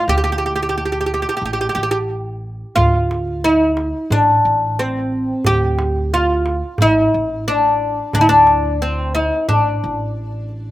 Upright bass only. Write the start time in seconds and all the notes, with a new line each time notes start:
0.08 D2
1.41 A1
1.76 A1
2.77 D2
4.10 A1
4.45 A1
5.46 D2
6.80 A1
7.14 A1
8.14 D2
9.49 A1
9.84 A1